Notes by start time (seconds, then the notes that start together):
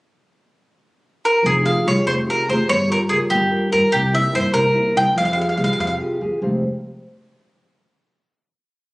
1.25 A#4
1.43 F1 F3 G#4
1.62 F4 G4 G#4 F5
1.84 C2 F4 G4 G#4 C#5
2.06 F1 C3 C5
2.27 F4 G4 G#4 A#4
2.47 F1 F4 G4 G#4 C5
2.68 G1 G3 C#5
2.89 F4 G4 A#4
3.08 C#2 F4 G4 G#4 A#4
3.30 G1 G3 G4
3.51 F4 G4 A#4
3.71 G2 F4 G4 A#4
3.92 C2 C3 G4
4.13 A#3 C4 E4 E5
4.32 G2 A#3 C4 E4 C5
4.52 C2 G3 A#4
4.74 A#3 C4 E4
4.95 C2 A#3 C4 E4 G5
5.14 F2 F3 F5
5.25 F5
5.33 F4 G4 G#4 F5
5.41 F5
5.49 F5
5.56 C2 F4 G4 G#4 F5
5.64 F5
5.73 F5
5.77 F2 C3 F5
5.87 F5
6.00 F4 G4 G#4
6.21 F2 F4 G4 G#4
6.42 F1 F2 C3 G#3 G4 C5 F5